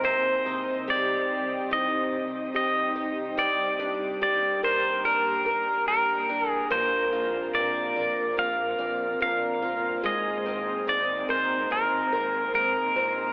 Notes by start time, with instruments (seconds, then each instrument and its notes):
Already playing: ambient pad C3, twelve-string acoustic guitar C4 D#4 A#4
0.04 twelve-string acoustic guitar C3, ambient pad G3 D#4, pedal steel guitar C5
0.46 twelve-string acoustic guitar D#4
0.88 twelve-string acoustic guitar G4, pedal steel guitar D5
1.71 twelve-string acoustic guitar D#4, pedal steel guitar D#5
2.54 twelve-string acoustic guitar G4, pedal steel guitar D#5
2.96 twelve-string acoustic guitar D#4
3.37 twelve-string acoustic guitar G3, ambient pad G3 A#3, pedal steel guitar D5
3.79 twelve-string acoustic guitar D4
4.21 twelve-string acoustic guitar G4, pedal steel guitar D5
4.63 twelve-string acoustic guitar A#4, pedal steel guitar C5
5.05 twelve-string acoustic guitar D4, pedal steel guitar A#4
5.46 twelve-string acoustic guitar A#4
5.88 twelve-string acoustic guitar G4, pedal steel guitar A#4
6.29 twelve-string acoustic guitar D4
6.50 pedal steel guitar G#4
6.70 analog synth bass A#1, twelve-string acoustic guitar A#3, ambient pad C4, pedal steel guitar C5
7.12 analog synth bass A#1, twelve-string acoustic guitar F4
7.54 analog synth bass A#1, twelve-string acoustic guitar A#4, pedal steel guitar D5
7.96 analog synth bass A#1, twelve-string acoustic guitar D5
8.37 analog synth bass A#1, twelve-string acoustic guitar F4, pedal steel guitar F5
8.79 analog synth bass A#1, twelve-string acoustic guitar D5
9.20 analog synth bass A#1, twelve-string acoustic guitar A#4, pedal steel guitar F5
9.62 analog synth bass G1, twelve-string acoustic guitar F4
10.03 analog synth bass G#1, twelve-string acoustic guitar G#3, ambient pad G#3 A#3, pedal steel guitar D#5
10.46 analog synth bass G#1, twelve-string acoustic guitar C4
10.87 analog synth bass G#1, twelve-string acoustic guitar D#4, pedal steel guitar D5
11.29 analog synth bass G#1, twelve-string acoustic guitar A#4, pedal steel guitar C5
11.70 analog synth bass G#1, twelve-string acoustic guitar C4, pedal steel guitar A#4
12.13 analog synth bass G#1, twelve-string acoustic guitar A#4
12.54 analog synth bass G#1, twelve-string acoustic guitar D#4, pedal steel guitar A#4
12.95 analog synth bass A#1, twelve-string acoustic guitar C4